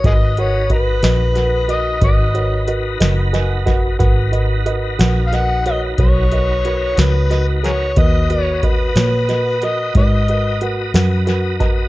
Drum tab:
HH |xxxxxxxxxxxx|xxxxxxxxxxxx|xxxxxxxxxxxx|
SD |---o-----o-o|---o-----o-o|---o-----o--|
BD |o-o---o----o|o-----o-----|o-o---o----o|